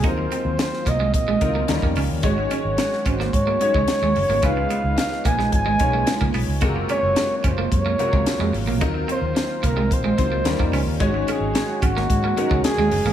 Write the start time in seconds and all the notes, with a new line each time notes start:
Already playing: F#3 A#3 F5
0.03 D#2 D#3 F#3 C4 D#4 F4 A#4 C5, kick, closed hi-hat
0.18 muted clean electric guitar stroke
0.32 C4, closed hi-hat
0.45 D#2
0.59 C5, muted clean electric guitar stroke, snare, closed hi-hat
0.73 snare
0.86 C2 A#3 D#5, kick, closed hi-hat
1.00 G#3
1.14 A#1 D#5, kick, closed hi-hat
1.28 G#3
1.41 C#2 F#3 C4 D#4 F4 A#4, muted clean electric guitar stroke, kick, closed hi-hat
1.55 A#3
1.68 D#2 G3 A#3 C#4 D#4 F4 A#4, muted clean electric guitar stroke, snare, closed hi-hat
1.82 F2 A#3, kick
1.96 C#2 C#4, open hi-hat
2.10 D#2
2.23 G#1 F#3 G#3 C#4 D#4 F#4 C#5, kick, closed hi-hat
2.38 muted clean electric guitar stroke
2.51 C#4 C#5, closed hi-hat
2.64 G#1
2.78 muted clean electric guitar stroke, snare, closed hi-hat
2.93 snare
3.05 G#1 C#4 C5, kick, closed hi-hat
3.20 A#3, snare
3.33 G#2 C#5, kick, closed hi-hat
3.47 A#3
3.60 G#3 C#4 D#4 F#4 C#5, muted clean electric guitar stroke, closed hi-hat
3.74 C#2 G#3, kick
3.88 snare, closed hi-hat
4.02 D#2 G#3
4.15 F#1, muted clean electric guitar stroke, open hi-hat
4.29 G#1 A#3
4.42 C#2 C#3 F3 G#3 B3 C#4 D#4 F4 B4 F5, kick, closed hi-hat
4.57 muted clean electric guitar stroke
4.70 B3, closed hi-hat
4.83 C#2
4.98 F5, muted clean electric guitar stroke, snare, closed hi-hat
5.12 snare
5.25 A#1 A#3 G#5, kick, closed hi-hat
5.39 G#3, snare
5.52 G#1 G#5, kick, closed hi-hat
5.66 G#3
5.79 B1 G#3 C#4 D#4 F4 C#5, muted clean electric guitar stroke, kick, closed hi-hat
5.93 A#3
6.07 muted clean electric guitar stroke, snare, closed hi-hat
6.21 C#2 A#3, kick
6.34 B1 B3, open hi-hat
6.48 C#2
6.61 F#1 C3 F#3 G#3 A#3 F4 F#4 A#4 F5, kick, closed hi-hat
6.76 muted clean electric guitar stroke
6.89 C#4 C#5, closed hi-hat
7.02 F#1
7.16 muted clean electric guitar stroke, snare, closed hi-hat
7.38 C#5
7.44 F#1 C#4 C5, kick, closed hi-hat
7.58 A#3
7.71 F#2 C#5, kick, closed hi-hat
7.86 A#3
7.99 C3 G#3 F4 F#4 A#4, muted clean electric guitar stroke, closed hi-hat
8.13 C#2 G#3, kick
8.26 snare, closed hi-hat
8.39 F2 G#3
8.52 G#1, muted clean electric guitar stroke, open hi-hat
8.66 A#1 A#3
8.81 D#2 D#3 F#3 C4 D#4 F4 A#4, kick, closed hi-hat
8.94 muted clean electric guitar stroke
9.08 C4 C5, closed hi-hat
9.21 D#2
9.35 muted clean electric guitar stroke, snare, closed hi-hat
9.63 C2 A#3 A#4, kick, closed hi-hat
9.77 G#3
9.91 A#1 C5, kick, closed hi-hat
10.04 G#3
10.18 C#2 F#3 C4 D#4 F4 C5, muted clean electric guitar stroke, kick, closed hi-hat
10.32 A#3
10.44 D#2 G3 C#4 D#4 F4 A#4, muted clean electric guitar stroke, snare, closed hi-hat
10.59 F2 A#3, kick
10.72 C#2 C#4, open hi-hat
10.85 D#2
11.00 G#1 D#3 F#3 G#3 C#4 D#4 F#4 C#5, kick, closed hi-hat
11.14 muted clean electric guitar stroke
11.28 C#4 G#4, closed hi-hat
11.40 G#1
11.55 muted clean electric guitar stroke, snare, closed hi-hat
11.82 G#1 C#4 F#4, kick, closed hi-hat
11.97 A#3, snare
12.10 G#2, kick, closed hi-hat
12.24 A#3
12.37 G#3 C#4 D#4 F#4 A#4, muted clean electric guitar stroke, closed hi-hat
12.51 C#2 G#3, kick
12.64 G#4, snare, closed hi-hat
12.77 D#2 G#3
12.91 F#1, muted clean electric guitar stroke, open hi-hat
13.05 G#1 A#3